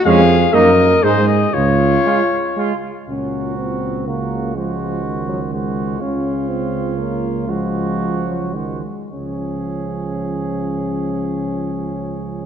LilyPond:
<<
  \new Staff \with { instrumentName = "Trumpet" } { \time 3/4 \key des \major \tempo 4 = 118 f''4 ees''4 c''8 ees''8 | des''2~ des''8 r8 | bes'2 bes'4 | c''2 c''4 |
des''2. | c''2 c''8 r8 | des''2.~ | des''2. | }
  \new Staff \with { instrumentName = "Flugelhorn" } { \time 3/4 \key des \major des'4 ees'4 ees'4 | r4 f'4 f'4 | ges'2 ges'4 | ges'2 ges'4 |
f'2. | ges'2 ges'8 r8 | aes'2.~ | aes'2. | }
  \new Staff \with { instrumentName = "French horn" } { \time 3/4 \key des \major aes'4 bes'4 aes'4 | f'2~ f'8 r8 | des'4 c'4 bes4 | aes4. ges8 aes4 |
des'4 c'4 bes4 | aes4. ges8 aes4 | des'2.~ | des'2. | }
  \new Staff \with { instrumentName = "Trombone" } { \clef bass \time 3/4 \key des \major aes4 bes4 aes4 | r4 aes4 aes4 | bes,2 des4 | f4 ees2 |
des2. | f2 ees8 r8 | f2.~ | f2. | }
  \new Staff \with { instrumentName = "Tuba" } { \clef bass \time 3/4 \key des \major f,4 ges,4 aes,4 | des,4 r2 | des,2.~ | des,2. |
des,2.~ | des,2~ des,8 r8 | des,2.~ | des,2. | }
>>